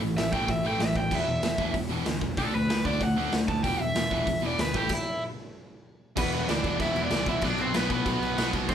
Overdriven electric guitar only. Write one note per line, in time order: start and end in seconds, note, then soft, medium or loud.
0.17 0.32 E5 medium
0.33 0.48 G5 medium
0.51 0.65 E5 loud
0.67 0.81 G5 medium
0.82 0.96 E5 medium
0.97 1.15 G5 loud
1.15 1.74 E5 loud
2.38 2.53 A4 loud
2.55 2.85 B4 medium
2.86 3.01 D5 medium
3.03 3.33 F#5 loud
3.48 3.63 A5 loud
3.63 3.80 G5 loud
3.80 4.41 E5 loud
4.46 4.60 D5 loud
4.60 4.75 B4 loud
4.77 4.91 G4 loud
4.93 5.22 E4 loud
6.18 6.47 B3 medium
6.18 6.47 B4 loud
6.49 6.78 D4 medium
6.49 6.80 D5 loud
6.80 7.02 E4 medium
6.80 7.04 E5 loud
7.04 7.26 D4 medium
7.04 7.28 D5 medium
7.29 7.43 E4 loud
7.29 7.44 E5 loud
7.44 7.59 D4 medium
7.44 7.59 D5 loud
7.61 7.74 C4 medium
7.61 7.75 C5 loud
7.75 7.90 B3 medium
7.75 7.90 B4 medium
7.91 8.50 B3 medium
7.91 8.50 B4 medium
8.69 8.75 C4 medium
8.69 8.75 C5 loud